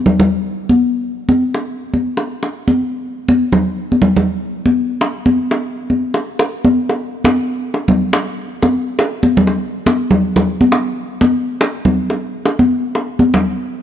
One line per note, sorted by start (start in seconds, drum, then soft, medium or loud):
0.06 low conga medium
0.20 low conga medium
0.69 high conga medium
1.29 high conga medium
1.54 high bongo soft
1.94 high conga medium
2.17 high bongo soft
2.43 high bongo soft
2.68 high conga medium
3.29 high conga medium
3.52 high bongo soft
3.52 low conga medium
3.92 high conga medium
4.02 low conga medium
4.16 low conga medium
4.66 high conga medium
5.01 high bongo medium
5.26 high conga medium
5.51 high bongo medium
5.90 high conga medium
6.14 high bongo medium
6.39 high bongo medium
6.65 high conga medium
6.89 high bongo medium
7.24 high bongo medium
7.24 high conga medium
7.74 high bongo soft
7.88 high conga medium
7.88 low conga medium
8.13 high bongo medium
8.62 high bongo medium
8.62 high conga medium
8.99 high bongo medium
9.23 high conga medium
9.37 low conga loud
9.47 high bongo medium
9.86 high bongo medium
9.86 high conga medium
10.11 low conga loud
10.36 high bongo medium
10.36 low conga medium
10.61 high conga medium
10.72 high bongo medium
11.21 high bongo medium
11.21 high conga loud
11.61 high bongo medium
11.85 high conga medium
11.85 low conga medium
12.10 high bongo soft
12.45 high bongo medium
12.59 high conga loud
12.95 high bongo medium
13.19 high conga loud
13.34 high bongo medium
13.34 low conga medium